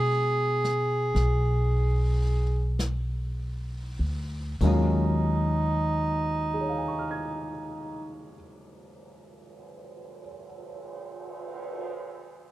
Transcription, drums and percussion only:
0.64 snare
1.16 brush sweep, snare
2.79 brush sweep, snare, hi-hat pedal
4.61 kick, ride

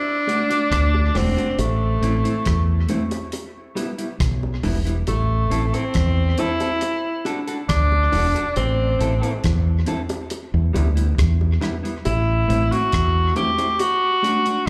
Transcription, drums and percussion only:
0.28 closed hi-hat, high bongo
0.51 closed hi-hat
0.72 kick, cross-stick, closed hi-hat
0.95 high bongo
1.15 cross-stick, open hi-hat, low bongo
1.38 closed hi-hat
1.59 closed hi-hat, high bongo
2.03 closed hi-hat
2.25 closed hi-hat
2.45 kick, cross-stick, closed hi-hat
2.89 closed hi-hat, high bongo, low bongo
3.11 closed hi-hat, high bongo
3.32 closed hi-hat, high bongo
3.76 closed hi-hat, high bongo
3.99 closed hi-hat
4.20 kick, cross-stick, closed hi-hat
4.43 high bongo
4.63 open hi-hat, low bongo
4.87 closed hi-hat
5.07 closed hi-hat, high bongo
5.51 closed hi-hat
5.74 closed hi-hat
5.94 kick, cross-stick, closed hi-hat
6.38 closed hi-hat, high bongo, low bongo
6.60 closed hi-hat, high bongo
6.81 closed hi-hat, high bongo
7.25 closed hi-hat, high bongo
7.48 closed hi-hat
7.69 kick, cross-stick, closed hi-hat
7.92 high bongo
8.12 open hi-hat, low bongo
8.36 closed hi-hat
8.56 closed hi-hat, high bongo
9.01 closed hi-hat
9.23 closed hi-hat
9.44 kick, cross-stick, closed hi-hat
9.86 closed hi-hat, high bongo, low bongo
10.09 closed hi-hat, high bongo
10.30 closed hi-hat, high bongo
10.74 closed hi-hat, high bongo
10.97 closed hi-hat
11.18 kick, cross-stick, closed hi-hat
11.41 high bongo
11.61 cross-stick, closed hi-hat, low bongo
11.85 closed hi-hat
12.05 closed hi-hat, high bongo
12.50 closed hi-hat
12.72 closed hi-hat
12.92 kick, cross-stick, closed hi-hat
13.36 closed hi-hat, high bongo, low bongo
13.59 closed hi-hat, high bongo
13.79 closed hi-hat, high bongo
14.23 closed hi-hat, high bongo
14.46 closed hi-hat

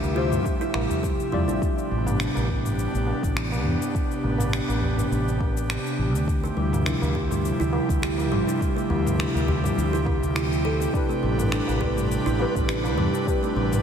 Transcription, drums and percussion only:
0.03 tabla na, cabasa
0.16 tabla tin
0.32 mid tom, tabla tin, cabasa
0.45 kick, cabasa
0.62 cabasa
0.74 finger snap, tabla na
0.90 tabla ge, cabasa
1.04 kick, cabasa
1.20 cabasa
1.33 tabla ge
1.49 cabasa
1.62 kick, cabasa
1.78 cabasa
2.06 mid tom, tabla na, tabla tin, cabasa
2.20 finger snap, cabasa
2.35 tabla na, cabasa
2.49 kick, tabla tin
2.65 mid tom, tabla tin, cabasa
2.79 cabasa
2.95 cabasa
3.07 tabla na, tabla tin
3.23 kick, cabasa
3.37 finger snap, cabasa
3.52 tabla na, cabasa
3.65 mid tom
3.82 cabasa
3.95 kick, cabasa
4.10 tabla tin, cabasa
4.23 tabla na
4.38 mid tom, tabla na, tabla tin, cabasa
4.53 finger snap, cabasa
4.68 tabla na, cabasa
4.82 tabla tin, tabla ge
4.97 mid tom, tabla tin, cabasa
5.12 cabasa
5.28 cabasa
5.40 kick, tabla na
5.57 cabasa
5.70 finger snap, cabasa
5.87 cabasa
6.15 cabasa
6.28 kick, cabasa
6.45 cabasa
6.73 mid tom, tabla na, tabla tin, cabasa
6.86 finger snap, cabasa
7.02 tabla na, cabasa
7.15 kick, tabla tin
7.31 mid tom, tabla tin, cabasa
7.45 cabasa
7.61 cabasa
7.73 tabla na, tabla tin
7.89 kick, cabasa
8.03 finger snap, cabasa
8.18 tabla na, cabasa
8.32 mid tom
8.49 cabasa
8.61 kick, cabasa
8.78 cabasa
8.90 tabla na, tabla ge
9.05 mid tom, tabla na, tabla tin, cabasa
9.20 finger snap, cabasa
9.35 tabla na, cabasa
9.48 tabla tin, tabla ge
9.63 mid tom, tabla tin, cabasa
9.79 cabasa
9.95 cabasa
10.05 kick, tabla na
10.23 cabasa
10.36 finger snap, cabasa
10.53 cabasa
10.82 cabasa
10.94 kick, cabasa
11.10 cabasa
11.38 mid tom, tabla na, tabla tin, cabasa
11.52 finger snap, cabasa
11.68 tabla na, cabasa
11.81 kick
11.97 mid tom, tabla tin, cabasa
12.12 cabasa
12.27 cabasa
12.39 tabla na, tabla tin
12.55 kick, cabasa
12.69 finger snap, cabasa
12.84 tabla na, cabasa
12.98 mid tom
13.15 cabasa
13.27 kick, cabasa
13.43 tabla tin, cabasa
13.56 tabla na
13.72 mid tom, tabla na, tabla tin, cabasa

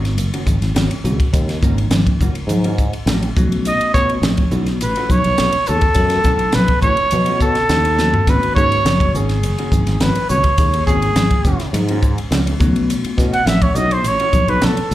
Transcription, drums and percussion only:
0.05 snare, ride
0.18 hi-hat pedal, ride, muted conga
0.34 ride
0.47 kick, hi-hat pedal, muted conga, high conga
0.62 snare, ride
0.75 snare, hi-hat pedal, ride, high conga
0.91 ride
1.05 hi-hat pedal
1.20 kick, ride
1.34 kick, hi-hat pedal, ride, muted conga
1.49 snare, ride
1.63 kick, hi-hat pedal
1.78 ride
1.91 snare, hi-hat pedal, ride, muted conga, high conga
2.07 kick, ride
2.21 kick, hi-hat pedal
2.35 ride
2.49 hi-hat pedal, ride, muted conga, high conga
2.64 ride
2.78 kick, hi-hat pedal
2.93 ride
3.07 snare, hi-hat pedal, ride, high conga
3.23 ride
3.37 kick, hi-hat pedal, high conga
3.52 ride
3.65 hi-hat pedal, ride, muted conga
3.81 ride
3.94 kick, snare, hi-hat pedal
4.09 ride
4.23 snare, hi-hat pedal, ride, muted conga, high conga
4.37 kick, ride
4.51 hi-hat pedal
4.66 snare, ride
4.81 hi-hat pedal, ride, muted conga
4.96 ride
5.10 kick, hi-hat pedal, muted conga, high conga
5.24 ride
5.38 snare, hi-hat pedal, ride, high conga
5.52 ride
5.66 hi-hat pedal
5.81 kick, ride
5.94 kick, hi-hat pedal, ride
6.10 snare, ride
6.24 kick, snare, hi-hat pedal
6.39 ride
6.52 snare, hi-hat pedal, ride, muted conga, high conga
6.68 kick, ride
6.82 kick, hi-hat pedal
6.97 ride
7.11 hi-hat pedal, ride, muted conga, high conga
7.26 ride
7.40 kick, hi-hat pedal, muted conga, low conga
7.55 snare, ride
7.69 snare, hi-hat pedal, ride, high conga
7.85 ride
7.98 snare, hi-hat pedal, high conga
8.14 floor tom
8.27 kick, hi-hat pedal, ride
8.43 ride
8.56 kick, hi-hat pedal
8.72 ride
8.86 snare, hi-hat pedal, ride, muted conga, high conga
9.00 kick, ride
9.15 hi-hat pedal
9.29 snare, ride
9.43 hi-hat pedal, ride, muted conga
9.58 ride
9.72 kick, hi-hat pedal, muted conga, high conga
9.87 snare, ride
10.00 snare, hi-hat pedal, ride, high conga
10.15 ride
10.29 hi-hat pedal
10.44 kick, ride
10.58 kick, hi-hat pedal, ride, muted conga
10.74 ride
10.87 kick, hi-hat pedal
11.02 ride
11.16 snare, hi-hat pedal, ride, muted conga, high conga
11.31 kick, ride
11.45 kick, hi-hat pedal
11.60 snare, ride
11.74 hi-hat pedal, ride, muted conga, high conga
11.89 ride
12.03 kick, hi-hat pedal
12.18 ride
12.31 snare, hi-hat pedal, ride, high conga
12.47 ride
12.60 kick, hi-hat pedal, high conga
12.76 ride
12.90 hi-hat pedal, ride, muted conga
13.04 ride
13.18 kick, snare, hi-hat pedal
13.33 ride
13.47 snare, hi-hat pedal, ride, muted conga, high conga
13.62 kick, ride
13.75 hi-hat pedal
13.91 ride
14.04 hi-hat pedal, ride, muted conga
14.20 ride
14.33 kick, hi-hat pedal, muted conga, high conga
14.48 ride
14.62 snare, hi-hat pedal, ride, high conga
14.77 ride
14.91 hi-hat pedal

